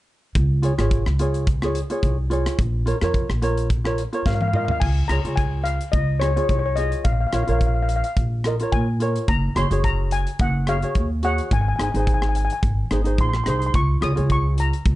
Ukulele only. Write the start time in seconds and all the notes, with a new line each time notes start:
0.62 F4 G#4 C#5
0.78 F4 G#4 C#5
1.19 F4 G#4 C#5
1.63 F4 G#4 C#5
1.90 F4 G#4 C#5
2.30 F4 G#4 C#5
2.86 F4 A#4 C#5
3.01 F4 A#4 C#5
3.42 F4 A#4 C#5
3.84 F4 A#4 C#5
4.13 F4 A#4 C#5
4.27 A#4
4.53 F4 A#4 D#5
5.09 F4 G#4 C#5
5.25 F4 G#4 C#5
6.21 F4 G#4 C#5
6.36 F4 G#4 C#5
6.77 F4 G#4 C#5
7.32 F4 A#4 C#5
7.47 F4 A#4 C#5
8.45 F4 A#4 D#5
8.60 F4 A#4 C#5
9.00 F4 A#4 C#5
9.55 F#4 G#4 C#5
9.71 F#4 G#4 C#5
10.67 F#4 G#4 C#5
10.82 F#4 G#4 C#5
11.23 F#4 G#4 C#5
11.78 D#4 G#4 C5
11.94 D#4 G#4 C5
12.91 D#4 G#4 C5
13.04 D#4 G#4 C5
13.46 D#4 G#4 C5
14.01 F4 G#4 C#5
14.15 F4 G#4 C#5